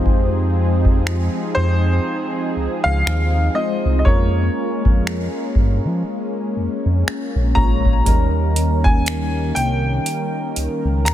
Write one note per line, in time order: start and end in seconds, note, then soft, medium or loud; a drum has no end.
0.00 1.29 F2 loud
0.00 4.02 F3 medium
0.00 1.16 G#3 medium
0.00 1.17 C4 medium
0.00 4.02 C4 medium
0.00 1.17 D#4 medium
0.00 4.02 D#4 medium
0.00 1.17 F4 medium
0.00 4.08 G4 medium
0.00 4.02 G#4 loud
0.00 1.18 C5 medium
0.00 4.08 D#5 medium
0.06 kick loud
0.85 kick medium
1.07 finger snap medium
1.55 1.99 F2 medium
1.55 2.88 C5 medium
2.56 2.68 C#2 soft
2.84 3.03 C#2 medium
2.84 3.58 F5 loud
3.06 3.49 D#2 medium
3.06 finger snap loud
3.54 3.96 G#3 medium
3.54 3.96 C4 medium
3.54 3.96 D#4 medium
3.54 3.97 F4 medium
3.54 3.97 C5 medium
3.54 3.98 D#5 medium
3.85 4.03 C2 medium
3.99 4.05 D#5 medium
4.05 4.49 F2 loud
4.05 5.61 G#3 medium
4.05 8.02 G#3 medium
4.05 11.14 A#3 medium
4.05 5.61 A#3 medium
4.05 11.14 C#4 medium
4.05 5.62 C#4 medium
4.05 5.62 F4 medium
4.05 5.62 A#4 medium
4.05 6.01 C#5 medium
4.05 kick loud
4.85 5.28 F2 medium
4.85 kick medium
5.07 finger snap medium
5.55 5.81 G2 medium
5.55 kick medium
5.85 6.03 F3 loud
6.56 6.68 F2 medium
6.86 7.03 F2 medium
7.08 finger snap loud
7.35 7.53 A#1 medium
7.55 8.08 A#1 loud
7.55 7.96 G#3 medium
7.55 7.96 A#3 medium
7.55 7.97 C#4 medium
7.55 7.97 F4 medium
7.55 7.97 C#5 medium
7.55 8.88 A#5 loud
7.55 kick medium
7.85 kick medium
8.05 9.52 D#2 loud
8.05 11.14 D#3 medium
8.05 9.61 G3 medium
8.05 9.61 A#3 medium
8.05 9.62 C#4 medium
8.05 9.62 D#4 medium
8.05 11.14 A#4 medium
8.05 9.62 A#4 medium
8.05 kick loud
8.05 closed hi-hat medium
8.56 closed hi-hat medium
8.84 9.52 G#5 loud
8.84 kick medium
9.06 finger snap loud
9.06 closed hi-hat medium
9.55 9.99 C2 medium
9.55 11.10 G5 medium
9.55 closed hi-hat medium
10.06 closed hi-hat medium
10.56 10.68 C#2 soft
10.56 closed hi-hat medium
10.85 11.07 C#2 medium
11.05 11.14 D#2 medium
11.05 11.14 A#5 medium
11.05 finger snap loud
11.05 closed hi-hat medium